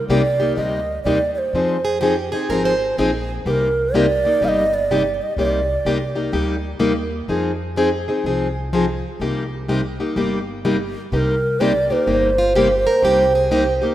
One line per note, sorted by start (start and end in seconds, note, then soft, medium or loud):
0.08 0.50 C2 medium
0.08 0.21 C3 medium
0.08 0.21 G3 medium
0.08 0.21 A#3 medium
0.08 0.22 D#4 medium
0.08 0.22 G4 medium
0.08 0.54 D5 medium
0.40 0.56 A#3 soft
0.40 0.57 D#4 soft
0.40 0.56 G4 medium
0.56 0.98 D2 medium
0.56 0.79 C3 medium
0.56 0.79 G3 medium
0.56 0.79 A#3 medium
0.56 0.80 D#4 medium
0.56 0.79 G4 medium
0.56 1.02 D#5 medium
1.04 1.46 D#2 medium
1.04 1.17 C3 medium
1.04 1.18 G3 medium
1.04 1.18 A#3 medium
1.04 1.18 D#4 medium
1.04 1.18 G4 medium
1.04 1.33 D5 medium
1.35 2.27 C5 medium
1.35 1.39 D5 medium
1.53 2.30 F2 medium
1.53 1.76 F3 medium
1.53 1.76 C4 medium
1.53 1.76 D#4 medium
1.53 1.76 G#4 medium
1.85 2.00 G#4 medium
2.01 2.13 F3 medium
2.01 2.14 C4 medium
2.01 2.14 D#4 medium
2.01 2.32 G4 medium
2.01 2.14 G#4 medium
2.32 2.50 C4 soft
2.32 2.50 D#4 soft
2.32 2.49 G#4 medium
2.49 2.90 G#1 medium
2.49 2.72 F3 medium
2.49 2.72 C4 medium
2.49 2.72 D#4 medium
2.49 2.73 G#4 medium
2.49 2.65 A#4 medium
2.65 2.96 C5 medium
2.98 3.39 A#1 medium
2.98 3.09 F3 medium
2.98 3.10 C4 medium
2.98 3.10 D#4 medium
2.98 3.35 G#4 medium
2.98 3.10 G#4 medium
3.46 4.22 C2 medium
3.46 3.68 C3 medium
3.46 3.68 G3 medium
3.46 3.68 A#3 medium
3.46 3.68 D#4 medium
3.46 3.68 G4 medium
3.46 3.51 B4 medium
3.50 3.96 A#4 medium
3.94 4.06 C3 medium
3.94 4.05 G3 medium
3.94 4.06 A#3 medium
3.94 4.06 D#4 medium
3.94 4.06 G4 medium
3.94 4.46 D5 medium
4.25 4.41 A#3 soft
4.25 4.41 D#4 soft
4.25 4.41 G4 soft
4.41 5.18 G1 medium
4.41 4.63 C3 medium
4.41 4.63 G3 medium
4.41 4.63 A#3 medium
4.41 4.64 D#4 medium
4.41 4.64 G4 medium
4.41 4.49 F5 medium
4.48 4.75 D#5 medium
4.74 5.14 D5 medium
4.91 5.02 C3 medium
4.91 5.02 G3 medium
4.91 5.02 A#3 medium
4.91 5.02 D#4 medium
4.91 5.02 G4 medium
5.14 5.24 D5 medium
5.22 5.37 D#5 medium
5.37 5.75 C2 medium
5.37 5.60 C3 medium
5.37 5.59 G3 soft
5.37 5.60 A#3 medium
5.37 5.60 D#4 medium
5.37 5.60 G4 medium
5.37 6.30 D5 medium
5.85 6.26 C2 medium
5.85 5.97 C3 medium
5.85 5.97 G3 medium
5.85 5.98 A#3 medium
5.85 5.98 D#4 medium
5.85 5.97 G4 medium
6.15 6.32 A#3 soft
6.15 6.32 D#4 soft
6.15 6.32 G4 soft
6.32 6.74 D2 medium
6.32 6.54 C3 medium
6.32 6.55 G3 medium
6.32 6.55 A#3 medium
6.32 6.55 D#4 medium
6.32 6.55 G4 medium
6.79 7.22 D#2 medium
6.79 6.92 C3 medium
6.79 6.92 G3 medium
6.79 6.92 A#3 medium
6.79 6.92 D#4 medium
6.79 6.92 G4 medium
7.28 8.05 F2 medium
7.28 7.51 F3 medium
7.28 7.51 C4 medium
7.28 7.51 D#4 medium
7.28 7.51 G#4 medium
7.76 7.88 F3 medium
7.76 7.89 C4 medium
7.76 7.89 D#4 medium
7.76 7.89 G#4 medium
8.08 8.25 C4 soft
8.08 8.25 D#4 soft
8.08 8.25 G#4 soft
8.24 9.01 C2 medium
8.24 8.47 F3 medium
8.24 8.47 C4 medium
8.24 8.47 D#4 medium
8.24 8.47 G#4 medium
8.73 8.84 F3 medium
8.73 8.84 C4 medium
8.73 8.85 D#4 medium
8.73 8.85 G#4 medium
9.20 9.97 C2 medium
9.20 9.42 C3 medium
9.20 9.43 G3 medium
9.20 9.43 A#3 medium
9.20 9.43 D#4 medium
9.20 9.43 G4 medium
9.68 9.80 C3 medium
9.68 9.80 G3 medium
9.68 9.80 A#3 medium
9.68 9.80 D#4 medium
9.68 9.80 G4 medium
10.00 10.16 A#3 soft
10.00 10.16 D#4 soft
10.00 10.16 G4 soft
10.16 10.93 G1 medium
10.16 10.38 C3 medium
10.16 10.38 G3 medium
10.16 10.38 A#3 medium
10.16 10.39 D#4 medium
10.16 10.39 G4 medium
10.65 10.76 C3 medium
10.65 10.76 G3 medium
10.65 10.76 A#3 medium
10.65 10.76 D#4 medium
10.65 10.76 G4 medium
11.12 11.89 C2 medium
11.12 11.34 C3 medium
11.12 11.34 G3 medium
11.12 11.34 A#3 medium
11.12 11.34 D#4 medium
11.12 11.35 G4 medium
11.12 11.17 B4 medium
11.16 11.62 A#4 medium
11.60 11.72 C3 medium
11.60 11.72 G3 medium
11.60 11.72 A#3 medium
11.60 11.72 D#4 medium
11.60 11.72 G4 medium
11.60 11.93 D5 medium
11.90 12.06 A#3 soft
11.90 12.06 D#4 soft
11.90 12.07 G4 medium
11.90 13.95 C5 medium
12.07 12.84 G1 medium
12.07 12.29 C3 medium
12.07 12.29 G3 medium
12.07 12.29 A#3 medium
12.07 12.29 D#4 medium
12.07 12.30 G4 medium
12.38 12.55 F4 medium
12.55 12.67 C3 medium
12.55 12.67 G3 medium
12.55 12.68 A#3 medium
12.55 12.68 D#4 medium
12.55 12.84 G4 medium
12.55 12.68 G4 medium
12.87 13.03 A#4 medium
13.03 13.80 C2 medium
13.03 13.25 C3 medium
13.03 13.25 G3 medium
13.03 13.25 A#3 medium
13.03 13.25 D#4 medium
13.03 13.25 G4 medium
13.03 13.35 G4 medium
13.35 13.52 G#4 medium
13.51 13.63 C3 medium
13.51 13.63 G3 medium
13.51 13.63 A#3 medium
13.51 13.63 D#4 medium
13.51 13.63 G4 medium
13.51 13.95 G4 medium
13.82 13.95 A#3 soft
13.82 13.95 D#4 soft
13.82 13.95 G4 medium